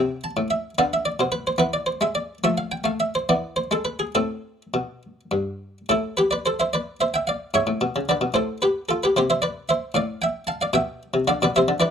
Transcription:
0.00 0.30 C3 medium
0.00 0.74 C4 soft
0.00 0.20 G5 medium
0.24 0.47 A5 medium
0.37 0.70 A2 medium
0.50 0.74 E5 medium
0.78 1.11 D3 medium
0.78 1.56 B3 medium
0.78 0.92 F5 loud
0.93 1.06 E5 medium
1.05 1.19 D5 medium
1.20 1.52 B2 medium
1.20 1.33 C5 medium
1.32 1.46 B4 medium
1.47 1.60 C5 medium
1.58 1.92 E3 medium
1.58 2.38 B3 soft
1.58 1.73 B4 medium
1.73 1.87 D5 medium
1.86 2.00 C5 medium
2.01 2.34 G#3 medium
2.01 2.15 E5 medium
2.15 2.43 D5 medium
2.44 2.77 F3 medium
2.44 2.83 A3 medium
2.44 2.57 E5 loud
2.58 2.71 F5 medium
2.72 2.85 G5 medium
2.84 3.18 A3 medium
2.84 2.99 F5 medium
3.00 3.13 E5 medium
3.15 3.28 C5 medium
3.29 3.63 E3 medium
3.29 4.11 B3 soft
3.29 3.57 D5 medium
3.56 3.71 C5 medium
3.71 4.06 G#3 medium
3.71 3.86 A4 medium
3.85 4.00 B4 medium
3.99 4.14 G#4 medium
4.15 4.62 A2 medium
4.15 5.85 C4 soft
4.15 5.02 A4 medium
4.74 5.20 B2 medium
5.31 5.78 G2 medium
5.89 7.08 A2 medium
5.89 6.16 E4 medium
5.89 6.17 A4 medium
6.17 6.30 G4 medium
6.17 6.31 B4 medium
6.31 6.44 B4 medium
6.31 6.44 D5 medium
6.46 6.58 A4 medium
6.46 6.59 C5 medium
6.60 6.72 C5 medium
6.60 6.73 E5 medium
6.73 6.99 B4 medium
6.73 6.96 D5 medium
7.01 7.13 C5 medium
7.01 7.13 E5 medium
7.14 7.27 E5 medium
7.14 7.27 G5 medium
7.27 7.53 D5 medium
7.27 7.50 F5 medium
7.54 7.67 G#2 medium
7.54 8.05 C#5 medium
7.54 8.00 E5 loud
7.67 7.80 A2 medium
7.81 7.94 B2 medium
7.96 8.08 C#3 medium
8.09 8.21 D3 medium
8.09 8.34 B4 medium
8.09 8.31 D5 medium
8.21 8.34 B2 medium
8.34 8.92 A2 medium
8.34 8.60 A4 medium
8.34 8.57 C5 medium
8.62 8.87 G4 medium
8.62 8.85 B4 medium
8.89 9.02 F4 medium
8.89 9.02 A4 medium
9.03 9.16 G4 medium
9.03 9.16 B4 medium
9.16 9.73 C3 medium
9.16 9.29 G4 medium
9.16 9.29 C5 loud
9.30 9.42 C5 medium
9.30 9.42 E5 medium
9.42 9.67 B4 medium
9.42 9.68 D5 medium
9.69 9.94 C5 medium
9.69 9.91 E5 medium
9.94 10.51 A2 medium
9.94 10.20 D5 medium
9.94 10.21 F5 loud
10.22 10.47 E5 medium
10.22 10.44 G5 medium
10.47 10.60 F5 medium
10.47 10.60 A5 loud
10.61 10.74 D5 medium
10.61 10.74 F5 medium
10.73 11.02 B2 medium
10.73 11.24 E5 medium
10.73 11.19 G5 loud
11.14 11.26 C3 medium
11.28 11.40 D3 medium
11.28 11.40 D5 medium
11.28 11.41 F5 loud
11.42 11.54 B2 medium
11.42 11.55 B4 medium
11.42 11.55 D5 medium
11.56 11.67 C3 medium
11.56 11.80 C5 medium
11.56 11.77 E5 loud
11.68 11.80 D3 medium
11.80 11.91 E3 medium
11.80 11.91 B4 medium
11.80 11.91 D5 loud

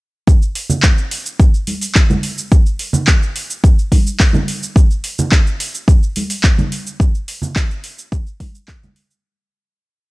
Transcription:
0.27 kick loud
0.27 cabasa medium
0.42 cabasa soft
0.55 open hi-hat medium
0.70 low conga medium
0.70 cabasa medium
0.83 kick loud
0.83 clap loud
0.83 cabasa medium
0.98 cabasa soft
1.11 open hi-hat medium
1.26 cabasa medium
1.40 kick loud
1.40 cabasa medium
1.54 cabasa soft
1.67 open hi-hat medium
1.67 high conga medium
1.81 open hi-hat medium
1.81 cabasa medium
1.95 kick loud
1.95 clap loud
1.95 cabasa medium
2.10 high conga medium
2.10 low conga medium
2.10 cabasa soft
2.23 open hi-hat loud
2.38 cabasa medium
2.52 kick loud
2.52 cabasa medium
2.66 cabasa soft
2.79 open hi-hat loud
2.93 low conga medium
2.93 cabasa medium
3.07 kick loud
3.07 clap loud
3.07 cabasa medium
3.23 cabasa soft
3.36 open hi-hat loud
3.50 cabasa medium
3.64 kick loud
3.64 cabasa medium
3.79 cabasa soft
3.92 kick medium
3.92 open hi-hat loud
3.92 high conga medium
4.07 cabasa medium
4.20 kick loud
4.20 clap loud
4.20 open hi-hat medium
4.20 cabasa soft
4.33 high conga medium
4.33 low conga medium
4.33 cabasa soft
4.48 open hi-hat loud
4.63 cabasa medium
4.76 kick loud
4.76 cabasa medium
4.91 cabasa soft
5.04 open hi-hat loud
5.19 low conga medium
5.19 cabasa medium
5.32 kick loud
5.32 clap loud
5.32 cabasa medium
5.47 cabasa soft
5.60 open hi-hat loud
5.75 cabasa medium
5.88 kick loud
5.88 cabasa medium
6.03 cabasa soft
6.16 open hi-hat loud
6.16 high conga medium
6.30 open hi-hat medium
6.30 cabasa medium
6.43 kick loud
6.43 clap loud
6.43 cabasa soft
6.58 high conga medium
6.58 low conga medium
6.58 cabasa soft
6.72 open hi-hat loud
6.87 cabasa medium
7.00 kick loud
7.00 cabasa medium
7.15 cabasa soft
7.28 open hi-hat loud
7.42 low conga medium
7.42 cabasa medium
7.56 kick loud
7.56 clap loud
7.56 cabasa medium
7.71 cabasa soft
7.84 open hi-hat loud
7.98 cabasa medium
8.12 kick loud
8.12 cabasa medium
8.27 cabasa soft
8.40 kick medium
8.40 open hi-hat loud
8.40 high conga medium
8.55 cabasa medium
8.68 kick loud
8.68 clap loud
8.68 open hi-hat medium
8.68 cabasa soft
8.83 high conga medium
8.83 low conga medium
8.83 cabasa soft
8.96 open hi-hat loud
9.11 cabasa medium

